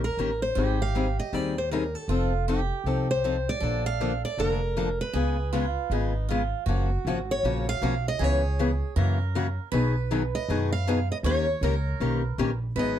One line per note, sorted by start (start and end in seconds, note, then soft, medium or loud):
0.00 0.12 A#1 medium
0.00 0.36 A#4 medium
0.04 0.42 A#4 medium
0.17 0.50 A1 medium
0.17 0.29 D#3 medium
0.17 0.29 A#3 medium
0.17 0.30 C#4 medium
0.17 0.30 G4 medium
0.17 0.30 A#4 medium
0.42 0.81 C5 medium
0.55 1.17 G#1 medium
0.55 0.77 D#3 medium
0.55 0.78 G3 medium
0.55 0.78 C4 medium
0.55 0.78 D#4 medium
0.55 2.09 G4 medium
0.55 0.78 G#4 medium
0.82 1.19 F5 medium
0.95 1.06 D#3 medium
0.95 1.06 G3 medium
0.95 1.06 C4 medium
0.95 1.06 D#4 medium
0.95 1.06 G#4 medium
1.19 1.34 D#5 medium
1.33 1.94 D#2 medium
1.33 1.54 D#3 medium
1.33 1.54 G3 medium
1.33 1.54 C4 medium
1.33 1.54 D#4 medium
1.33 1.54 G#4 medium
1.33 1.57 D5 medium
1.58 1.71 C5 medium
1.71 1.83 D#3 medium
1.71 1.83 G3 medium
1.71 1.83 C4 medium
1.71 1.83 D#4 medium
1.71 1.83 G#4 medium
1.71 1.95 A#4 medium
1.95 2.33 A4 medium
2.08 2.70 F1 medium
2.08 2.30 F3 medium
2.08 2.31 C4 medium
2.08 2.31 D#4 medium
2.08 2.45 F4 medium
2.08 2.31 A4 medium
2.48 2.59 F3 medium
2.48 2.59 C4 medium
2.48 2.59 D#4 medium
2.48 3.60 G4 medium
2.48 2.59 A4 medium
2.84 3.46 C2 medium
2.84 3.07 F3 medium
2.84 3.07 C4 medium
2.84 3.07 D#4 medium
2.84 3.07 A4 medium
3.11 3.49 C5 medium
3.24 3.35 F3 medium
3.24 3.35 C4 medium
3.24 3.35 D#4 medium
3.24 3.35 A4 medium
3.49 3.86 D5 medium
3.60 4.23 A#1 medium
3.60 3.83 D3 medium
3.60 3.83 F3 medium
3.60 3.83 A#3 medium
3.60 3.84 D4 medium
3.60 5.13 A4 medium
3.60 3.84 A4 medium
3.86 4.21 F5 medium
4.01 4.11 D3 medium
4.01 4.12 F3 medium
4.01 4.12 A#3 medium
4.01 4.12 D4 medium
4.01 4.12 A4 medium
4.25 4.40 D5 medium
4.38 4.99 F1 medium
4.38 4.59 D3 medium
4.38 4.60 F3 medium
4.38 4.60 A#3 medium
4.38 4.60 D4 medium
4.38 4.60 A4 medium
4.38 5.01 A#4 medium
4.77 4.88 D3 medium
4.77 4.88 F3 medium
4.77 4.88 A#3 medium
4.77 4.88 D4 medium
4.77 4.88 A4 medium
5.01 6.26 B4 medium
5.13 5.75 C#2 medium
5.13 5.36 C#3 medium
5.13 5.36 G#3 medium
5.13 5.36 B3 medium
5.13 5.36 F4 medium
5.13 5.52 G#4 medium
5.13 5.36 G#4 medium
5.53 5.64 C#3 medium
5.53 5.64 G#3 medium
5.53 5.65 B3 medium
5.53 5.92 F4 medium
5.53 5.65 F4 medium
5.53 5.65 G#4 medium
5.90 6.51 G#1 medium
5.90 6.12 C#3 medium
5.90 6.12 G#3 medium
5.90 6.12 B3 medium
5.90 6.31 D#4 medium
5.90 6.13 F4 medium
5.90 6.13 G#4 medium
6.29 6.41 C#3 medium
6.29 6.41 G#3 medium
6.29 6.41 B3 medium
6.29 6.64 F4 medium
6.29 6.41 F4 medium
6.29 6.41 G#4 medium
6.66 6.97 F#1 medium
6.66 6.89 C#3 medium
6.66 6.89 F3 medium
6.66 6.89 A#3 medium
6.66 6.89 C#4 medium
6.66 8.19 F#4 medium
6.66 6.89 F#4 medium
7.05 7.38 G#1 medium
7.05 7.17 C#3 medium
7.05 7.18 F3 medium
7.05 7.18 A#3 medium
7.05 7.18 C#4 medium
7.05 7.18 F#4 medium
7.31 7.68 C#5 medium
7.43 7.76 A#1 medium
7.43 7.65 C#3 medium
7.43 7.65 F3 medium
7.43 7.65 A#3 medium
7.43 7.65 C#4 medium
7.43 7.65 F#4 medium
7.69 8.07 F5 loud
7.82 8.14 B1 medium
7.82 7.93 C#3 medium
7.82 7.93 F3 medium
7.82 7.93 A#3 medium
7.82 7.94 C#4 medium
7.82 7.94 F#4 loud
8.08 8.24 D#5 medium
8.19 8.81 C#2 medium
8.19 8.41 C#3 medium
8.19 8.41 E3 medium
8.19 8.41 B3 medium
8.19 8.41 C#4 medium
8.19 8.96 G#4 medium
8.19 8.42 G#4 medium
8.24 9.59 C#5 medium
8.59 8.70 C#3 medium
8.59 8.70 E3 medium
8.59 8.70 B3 medium
8.59 8.70 C#4 medium
8.59 8.70 G#4 medium
8.96 9.57 F#2 medium
8.96 9.17 C#3 medium
8.96 9.17 E3 medium
8.96 9.18 A#3 medium
8.96 9.18 C#4 medium
8.96 9.18 F#4 medium
8.96 9.68 A#4 medium
9.35 9.46 C#3 medium
9.35 9.46 E3 medium
9.35 9.46 A#3 medium
9.35 9.46 C#4 loud
9.35 9.46 F#4 loud
9.72 10.33 B1 medium
9.72 9.93 B2 medium
9.72 9.93 D#3 medium
9.72 9.94 F#3 medium
9.72 9.94 B3 medium
9.72 9.94 D#4 medium
9.72 9.94 G#4 medium
9.72 11.20 B4 loud
10.11 10.21 B2 medium
10.11 10.22 D#3 medium
10.11 10.22 F#3 medium
10.11 10.22 B3 medium
10.11 10.22 D#4 medium
10.11 10.22 G#4 medium
10.35 10.70 D#5 medium
10.48 11.09 F#2 medium
10.48 10.69 B2 medium
10.48 10.70 D#3 medium
10.48 10.70 F#3 medium
10.48 10.70 B3 medium
10.48 10.70 D#4 medium
10.48 10.70 G#4 medium
10.72 11.07 F5 medium
10.87 10.98 B2 medium
10.87 10.98 D#3 medium
10.87 10.98 F#3 medium
10.87 10.98 B3 medium
10.87 10.98 D#4 loud
10.87 10.99 G#4 loud
11.12 11.17 D#5 medium
11.23 11.54 D#2 medium
11.23 11.46 D#3 medium
11.23 11.46 A#3 medium
11.23 11.46 C#4 medium
11.23 11.46 G4 medium
11.23 11.46 A#4 medium
11.23 11.62 C#5 medium
11.23 12.16 C#5 medium
11.61 11.94 C#2 medium
11.61 11.73 D#3 medium
11.61 11.74 A#3 medium
11.61 11.74 C#4 medium
11.61 11.74 G4 medium
11.61 12.57 A#4 medium
11.61 11.74 A#4 medium
12.00 12.33 B1 medium
12.00 12.21 D#3 medium
12.00 12.21 A#3 medium
12.00 12.21 C#4 medium
12.00 12.22 G4 medium
12.00 12.22 A#4 medium
12.16 12.58 B4 medium
12.38 12.71 A#1 medium
12.38 12.49 D#3 medium
12.38 12.50 A#3 medium
12.38 12.50 C#4 medium
12.38 12.50 G4 medium
12.38 12.50 A#4 medium
12.76 12.99 G#1 medium
12.76 12.97 D#3 medium
12.76 12.97 F#3 medium
12.76 12.98 B3 medium
12.76 12.98 D#4 medium
12.76 12.98 G#4 medium
12.76 12.99 B4 medium
12.76 12.99 D#5 medium